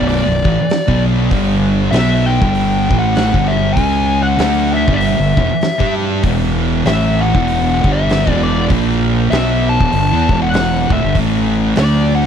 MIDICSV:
0, 0, Header, 1, 5, 480
1, 0, Start_track
1, 0, Tempo, 615385
1, 1021, Time_signature, 4, 2, 24, 8
1, 9565, End_track
2, 0, Start_track
2, 0, Title_t, "Lead electric guitar"
2, 0, Program_c, 0, 29
2, 67, Note_on_c, 0, 74, 81
2, 800, Note_off_c, 0, 74, 0
2, 1492, Note_on_c, 0, 76, 77
2, 1764, Note_on_c, 0, 79, 87
2, 1793, Note_off_c, 0, 76, 0
2, 2328, Note_off_c, 0, 79, 0
2, 2332, Note_on_c, 0, 78, 90
2, 2710, Note_on_c, 0, 76, 79
2, 2745, Note_off_c, 0, 78, 0
2, 2906, Note_on_c, 0, 80, 116
2, 2931, Note_off_c, 0, 76, 0
2, 3280, Note_off_c, 0, 80, 0
2, 3298, Note_on_c, 0, 78, 103
2, 3693, Note_off_c, 0, 78, 0
2, 3696, Note_on_c, 0, 76, 80
2, 3851, Note_on_c, 0, 74, 59
2, 3858, Note_off_c, 0, 76, 0
2, 3870, Note_on_c, 0, 76, 75
2, 3900, Note_off_c, 0, 74, 0
2, 4622, Note_off_c, 0, 76, 0
2, 5355, Note_on_c, 0, 76, 94
2, 5627, Note_off_c, 0, 76, 0
2, 5630, Note_on_c, 0, 78, 106
2, 6175, Note_off_c, 0, 78, 0
2, 6185, Note_on_c, 0, 76, 92
2, 6551, Note_off_c, 0, 76, 0
2, 6578, Note_on_c, 0, 74, 63
2, 6763, Note_off_c, 0, 74, 0
2, 7261, Note_on_c, 0, 76, 84
2, 7556, Note_off_c, 0, 76, 0
2, 7560, Note_on_c, 0, 81, 97
2, 8099, Note_off_c, 0, 81, 0
2, 8131, Note_on_c, 0, 78, 91
2, 8521, Note_off_c, 0, 78, 0
2, 8528, Note_on_c, 0, 76, 70
2, 8698, Note_off_c, 0, 76, 0
2, 9202, Note_on_c, 0, 74, 88
2, 9456, Note_off_c, 0, 74, 0
2, 9477, Note_on_c, 0, 78, 99
2, 9565, Note_off_c, 0, 78, 0
2, 9565, End_track
3, 0, Start_track
3, 0, Title_t, "Distorted electric guitar"
3, 0, Program_c, 1, 30
3, 0, Note_on_c, 1, 35, 94
3, 0, Note_on_c, 1, 42, 103
3, 0, Note_on_c, 1, 47, 95
3, 195, Note_off_c, 1, 35, 0
3, 198, Note_off_c, 1, 42, 0
3, 200, Note_off_c, 1, 47, 0
3, 205, Note_on_c, 1, 35, 65
3, 210, Note_on_c, 1, 42, 74
3, 340, Note_off_c, 1, 35, 0
3, 343, Note_on_c, 1, 45, 86
3, 344, Note_off_c, 1, 42, 0
3, 347, Note_on_c, 1, 52, 92
3, 436, Note_off_c, 1, 45, 0
3, 438, Note_off_c, 1, 52, 0
3, 683, Note_on_c, 1, 47, 82
3, 687, Note_on_c, 1, 54, 92
3, 692, Note_on_c, 1, 59, 102
3, 1013, Note_on_c, 1, 43, 91
3, 1015, Note_off_c, 1, 47, 0
3, 1017, Note_off_c, 1, 54, 0
3, 1018, Note_on_c, 1, 50, 94
3, 1019, Note_off_c, 1, 59, 0
3, 1021, Note_on_c, 1, 55, 101
3, 1487, Note_off_c, 1, 50, 0
3, 1491, Note_on_c, 1, 47, 91
3, 1492, Note_off_c, 1, 43, 0
3, 1494, Note_off_c, 1, 55, 0
3, 1497, Note_on_c, 1, 54, 91
3, 1504, Note_on_c, 1, 59, 95
3, 1873, Note_off_c, 1, 47, 0
3, 1873, Note_on_c, 1, 43, 95
3, 1876, Note_on_c, 1, 50, 96
3, 1878, Note_off_c, 1, 54, 0
3, 1881, Note_off_c, 1, 59, 0
3, 1881, Note_on_c, 1, 55, 98
3, 2254, Note_off_c, 1, 43, 0
3, 2255, Note_off_c, 1, 50, 0
3, 2258, Note_off_c, 1, 55, 0
3, 2258, Note_on_c, 1, 45, 83
3, 2258, Note_on_c, 1, 52, 93
3, 2266, Note_on_c, 1, 57, 105
3, 2587, Note_off_c, 1, 45, 0
3, 2590, Note_on_c, 1, 43, 81
3, 2592, Note_off_c, 1, 52, 0
3, 2596, Note_off_c, 1, 57, 0
3, 2596, Note_on_c, 1, 50, 90
3, 2602, Note_on_c, 1, 55, 102
3, 2927, Note_off_c, 1, 50, 0
3, 2930, Note_off_c, 1, 43, 0
3, 2930, Note_on_c, 1, 49, 94
3, 2934, Note_off_c, 1, 55, 0
3, 2938, Note_on_c, 1, 56, 93
3, 2941, Note_on_c, 1, 61, 107
3, 3405, Note_off_c, 1, 49, 0
3, 3408, Note_on_c, 1, 50, 81
3, 3411, Note_off_c, 1, 56, 0
3, 3415, Note_on_c, 1, 57, 89
3, 3417, Note_off_c, 1, 61, 0
3, 3422, Note_on_c, 1, 62, 96
3, 3791, Note_off_c, 1, 50, 0
3, 3791, Note_on_c, 1, 43, 100
3, 3797, Note_off_c, 1, 57, 0
3, 3800, Note_on_c, 1, 50, 104
3, 3801, Note_off_c, 1, 62, 0
3, 3805, Note_on_c, 1, 55, 99
3, 4027, Note_off_c, 1, 43, 0
3, 4029, Note_off_c, 1, 50, 0
3, 4036, Note_on_c, 1, 43, 65
3, 4038, Note_off_c, 1, 55, 0
3, 4039, Note_on_c, 1, 50, 69
3, 4180, Note_off_c, 1, 43, 0
3, 4183, Note_on_c, 1, 40, 89
3, 4186, Note_off_c, 1, 50, 0
3, 4189, Note_on_c, 1, 47, 98
3, 4278, Note_off_c, 1, 40, 0
3, 4281, Note_off_c, 1, 47, 0
3, 4514, Note_on_c, 1, 55, 82
3, 4518, Note_on_c, 1, 62, 91
3, 4520, Note_on_c, 1, 67, 88
3, 4852, Note_off_c, 1, 55, 0
3, 4854, Note_off_c, 1, 62, 0
3, 4855, Note_off_c, 1, 67, 0
3, 4860, Note_on_c, 1, 40, 98
3, 4866, Note_on_c, 1, 47, 106
3, 4869, Note_on_c, 1, 52, 114
3, 5335, Note_off_c, 1, 40, 0
3, 5336, Note_off_c, 1, 52, 0
3, 5338, Note_on_c, 1, 45, 95
3, 5339, Note_off_c, 1, 47, 0
3, 5345, Note_on_c, 1, 52, 90
3, 5353, Note_on_c, 1, 57, 97
3, 5719, Note_off_c, 1, 45, 0
3, 5722, Note_off_c, 1, 52, 0
3, 5724, Note_on_c, 1, 40, 89
3, 5726, Note_off_c, 1, 57, 0
3, 5730, Note_on_c, 1, 47, 98
3, 5734, Note_on_c, 1, 52, 99
3, 6100, Note_off_c, 1, 40, 0
3, 6103, Note_off_c, 1, 47, 0
3, 6105, Note_off_c, 1, 52, 0
3, 6108, Note_on_c, 1, 43, 95
3, 6113, Note_on_c, 1, 50, 88
3, 6118, Note_on_c, 1, 55, 106
3, 6437, Note_off_c, 1, 43, 0
3, 6439, Note_off_c, 1, 50, 0
3, 6442, Note_off_c, 1, 55, 0
3, 6443, Note_on_c, 1, 40, 83
3, 6450, Note_on_c, 1, 52, 103
3, 6451, Note_on_c, 1, 47, 84
3, 6775, Note_off_c, 1, 40, 0
3, 6777, Note_off_c, 1, 47, 0
3, 6779, Note_off_c, 1, 52, 0
3, 6780, Note_on_c, 1, 46, 105
3, 6785, Note_on_c, 1, 53, 106
3, 6789, Note_on_c, 1, 58, 102
3, 7255, Note_off_c, 1, 46, 0
3, 7257, Note_off_c, 1, 53, 0
3, 7260, Note_off_c, 1, 58, 0
3, 7261, Note_on_c, 1, 47, 89
3, 7266, Note_on_c, 1, 54, 96
3, 7268, Note_on_c, 1, 59, 104
3, 7638, Note_off_c, 1, 47, 0
3, 7641, Note_off_c, 1, 54, 0
3, 7642, Note_off_c, 1, 59, 0
3, 7643, Note_on_c, 1, 40, 86
3, 7649, Note_on_c, 1, 47, 104
3, 7735, Note_off_c, 1, 40, 0
3, 7738, Note_off_c, 1, 47, 0
3, 7739, Note_on_c, 1, 43, 96
3, 7749, Note_on_c, 1, 50, 90
3, 7875, Note_off_c, 1, 43, 0
3, 7880, Note_off_c, 1, 50, 0
3, 7891, Note_on_c, 1, 52, 86
3, 7897, Note_on_c, 1, 59, 103
3, 8022, Note_off_c, 1, 52, 0
3, 8024, Note_on_c, 1, 40, 82
3, 8025, Note_off_c, 1, 59, 0
3, 8029, Note_on_c, 1, 47, 89
3, 8034, Note_on_c, 1, 52, 109
3, 8495, Note_off_c, 1, 40, 0
3, 8498, Note_on_c, 1, 38, 90
3, 8499, Note_off_c, 1, 47, 0
3, 8501, Note_off_c, 1, 52, 0
3, 8505, Note_on_c, 1, 45, 103
3, 8593, Note_off_c, 1, 38, 0
3, 8597, Note_off_c, 1, 45, 0
3, 8601, Note_on_c, 1, 43, 96
3, 8608, Note_on_c, 1, 50, 95
3, 8693, Note_off_c, 1, 43, 0
3, 8697, Note_off_c, 1, 50, 0
3, 8699, Note_on_c, 1, 45, 111
3, 8704, Note_on_c, 1, 52, 99
3, 8709, Note_on_c, 1, 57, 107
3, 9171, Note_off_c, 1, 57, 0
3, 9172, Note_off_c, 1, 45, 0
3, 9172, Note_off_c, 1, 52, 0
3, 9175, Note_on_c, 1, 50, 83
3, 9180, Note_on_c, 1, 57, 100
3, 9185, Note_on_c, 1, 62, 92
3, 9553, Note_off_c, 1, 50, 0
3, 9556, Note_off_c, 1, 57, 0
3, 9558, Note_off_c, 1, 62, 0
3, 9565, End_track
4, 0, Start_track
4, 0, Title_t, "Fingered electric bass"
4, 0, Program_c, 2, 33
4, 0, Note_on_c, 2, 23, 96
4, 189, Note_off_c, 2, 23, 0
4, 200, Note_on_c, 2, 23, 74
4, 335, Note_off_c, 2, 23, 0
4, 351, Note_on_c, 2, 33, 79
4, 439, Note_off_c, 2, 33, 0
4, 687, Note_on_c, 2, 35, 87
4, 999, Note_off_c, 2, 35, 0
4, 1023, Note_on_c, 2, 31, 96
4, 1472, Note_off_c, 2, 31, 0
4, 1496, Note_on_c, 2, 35, 88
4, 1856, Note_off_c, 2, 35, 0
4, 1882, Note_on_c, 2, 31, 93
4, 2241, Note_off_c, 2, 31, 0
4, 2270, Note_on_c, 2, 33, 90
4, 2583, Note_off_c, 2, 33, 0
4, 2606, Note_on_c, 2, 31, 85
4, 2920, Note_off_c, 2, 31, 0
4, 2943, Note_on_c, 2, 37, 93
4, 3393, Note_off_c, 2, 37, 0
4, 3419, Note_on_c, 2, 38, 84
4, 3778, Note_off_c, 2, 38, 0
4, 3801, Note_on_c, 2, 31, 94
4, 4027, Note_off_c, 2, 31, 0
4, 4046, Note_on_c, 2, 31, 78
4, 4180, Note_off_c, 2, 31, 0
4, 4191, Note_on_c, 2, 28, 92
4, 4281, Note_off_c, 2, 28, 0
4, 4526, Note_on_c, 2, 43, 86
4, 4840, Note_off_c, 2, 43, 0
4, 4863, Note_on_c, 2, 28, 87
4, 5312, Note_off_c, 2, 28, 0
4, 5349, Note_on_c, 2, 33, 86
4, 5703, Note_off_c, 2, 33, 0
4, 5727, Note_on_c, 2, 28, 98
4, 6083, Note_off_c, 2, 28, 0
4, 6117, Note_on_c, 2, 31, 85
4, 6427, Note_off_c, 2, 31, 0
4, 6455, Note_on_c, 2, 28, 88
4, 6764, Note_off_c, 2, 28, 0
4, 6790, Note_on_c, 2, 34, 97
4, 7235, Note_off_c, 2, 34, 0
4, 7266, Note_on_c, 2, 35, 85
4, 7620, Note_off_c, 2, 35, 0
4, 7646, Note_on_c, 2, 28, 96
4, 7735, Note_off_c, 2, 28, 0
4, 7746, Note_on_c, 2, 31, 90
4, 7877, Note_off_c, 2, 31, 0
4, 7896, Note_on_c, 2, 40, 83
4, 8023, Note_off_c, 2, 40, 0
4, 8027, Note_on_c, 2, 28, 91
4, 8475, Note_off_c, 2, 28, 0
4, 8504, Note_on_c, 2, 26, 91
4, 8595, Note_off_c, 2, 26, 0
4, 8610, Note_on_c, 2, 31, 88
4, 8694, Note_off_c, 2, 31, 0
4, 8699, Note_on_c, 2, 33, 96
4, 9147, Note_off_c, 2, 33, 0
4, 9178, Note_on_c, 2, 38, 84
4, 9534, Note_off_c, 2, 38, 0
4, 9565, End_track
5, 0, Start_track
5, 0, Title_t, "Drums"
5, 65, Note_on_c, 9, 46, 53
5, 143, Note_off_c, 9, 46, 0
5, 352, Note_on_c, 9, 36, 105
5, 430, Note_off_c, 9, 36, 0
5, 545, Note_on_c, 9, 46, 56
5, 556, Note_on_c, 9, 38, 113
5, 623, Note_off_c, 9, 46, 0
5, 634, Note_off_c, 9, 38, 0
5, 689, Note_on_c, 9, 36, 93
5, 767, Note_off_c, 9, 36, 0
5, 1024, Note_on_c, 9, 36, 98
5, 1024, Note_on_c, 9, 46, 55
5, 1102, Note_off_c, 9, 36, 0
5, 1102, Note_off_c, 9, 46, 0
5, 1504, Note_on_c, 9, 46, 58
5, 1516, Note_on_c, 9, 38, 105
5, 1582, Note_off_c, 9, 46, 0
5, 1594, Note_off_c, 9, 38, 0
5, 1885, Note_on_c, 9, 36, 109
5, 1963, Note_off_c, 9, 36, 0
5, 1988, Note_on_c, 9, 46, 52
5, 2066, Note_off_c, 9, 46, 0
5, 2267, Note_on_c, 9, 36, 106
5, 2345, Note_off_c, 9, 36, 0
5, 2460, Note_on_c, 9, 46, 51
5, 2472, Note_on_c, 9, 38, 107
5, 2538, Note_off_c, 9, 46, 0
5, 2550, Note_off_c, 9, 38, 0
5, 2606, Note_on_c, 9, 36, 100
5, 2684, Note_off_c, 9, 36, 0
5, 2939, Note_on_c, 9, 46, 58
5, 2940, Note_on_c, 9, 36, 98
5, 3017, Note_off_c, 9, 46, 0
5, 3018, Note_off_c, 9, 36, 0
5, 3421, Note_on_c, 9, 46, 58
5, 3433, Note_on_c, 9, 38, 115
5, 3499, Note_off_c, 9, 46, 0
5, 3511, Note_off_c, 9, 38, 0
5, 3805, Note_on_c, 9, 36, 104
5, 3883, Note_off_c, 9, 36, 0
5, 3903, Note_on_c, 9, 46, 55
5, 3981, Note_off_c, 9, 46, 0
5, 4190, Note_on_c, 9, 36, 101
5, 4268, Note_off_c, 9, 36, 0
5, 4378, Note_on_c, 9, 46, 51
5, 4390, Note_on_c, 9, 38, 104
5, 4456, Note_off_c, 9, 46, 0
5, 4468, Note_off_c, 9, 38, 0
5, 4526, Note_on_c, 9, 36, 90
5, 4604, Note_off_c, 9, 36, 0
5, 4861, Note_on_c, 9, 46, 58
5, 4864, Note_on_c, 9, 36, 103
5, 4939, Note_off_c, 9, 46, 0
5, 4942, Note_off_c, 9, 36, 0
5, 5347, Note_on_c, 9, 46, 59
5, 5359, Note_on_c, 9, 38, 114
5, 5425, Note_off_c, 9, 46, 0
5, 5437, Note_off_c, 9, 38, 0
5, 5731, Note_on_c, 9, 36, 106
5, 5809, Note_off_c, 9, 36, 0
5, 5833, Note_on_c, 9, 46, 52
5, 5911, Note_off_c, 9, 46, 0
5, 6117, Note_on_c, 9, 36, 107
5, 6195, Note_off_c, 9, 36, 0
5, 6315, Note_on_c, 9, 46, 50
5, 6327, Note_on_c, 9, 38, 102
5, 6393, Note_off_c, 9, 46, 0
5, 6405, Note_off_c, 9, 38, 0
5, 6453, Note_on_c, 9, 36, 96
5, 6531, Note_off_c, 9, 36, 0
5, 6788, Note_on_c, 9, 36, 101
5, 6790, Note_on_c, 9, 46, 53
5, 6866, Note_off_c, 9, 36, 0
5, 6868, Note_off_c, 9, 46, 0
5, 7267, Note_on_c, 9, 46, 53
5, 7279, Note_on_c, 9, 38, 106
5, 7345, Note_off_c, 9, 46, 0
5, 7357, Note_off_c, 9, 38, 0
5, 7648, Note_on_c, 9, 36, 100
5, 7726, Note_off_c, 9, 36, 0
5, 7741, Note_on_c, 9, 46, 55
5, 7819, Note_off_c, 9, 46, 0
5, 8028, Note_on_c, 9, 36, 106
5, 8106, Note_off_c, 9, 36, 0
5, 8218, Note_on_c, 9, 46, 58
5, 8230, Note_on_c, 9, 38, 109
5, 8296, Note_off_c, 9, 46, 0
5, 8308, Note_off_c, 9, 38, 0
5, 8505, Note_on_c, 9, 36, 99
5, 8583, Note_off_c, 9, 36, 0
5, 8699, Note_on_c, 9, 36, 101
5, 8700, Note_on_c, 9, 46, 57
5, 8777, Note_off_c, 9, 36, 0
5, 8778, Note_off_c, 9, 46, 0
5, 9171, Note_on_c, 9, 46, 58
5, 9182, Note_on_c, 9, 38, 114
5, 9249, Note_off_c, 9, 46, 0
5, 9260, Note_off_c, 9, 38, 0
5, 9565, End_track
0, 0, End_of_file